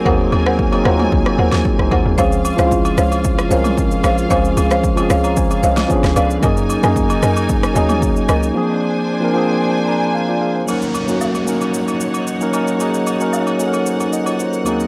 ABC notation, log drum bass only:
X:1
M:4/4
L:1/16
Q:1/4=113
K:Ebdor
V:1 name="Log drum bass" clef=bass
E,,2 E,,4 E,,2 C,, z E,, E,, z C,, E,, E,, | D,,3 D,,3 D,,4 C,,4 B,,,2 | D,,2 D,,4 D,,4 C,,2 z D,, D,,2 | G,,3 G,,3 G,,4 E,,4 D,,2 |
z16 | z16 | z16 |]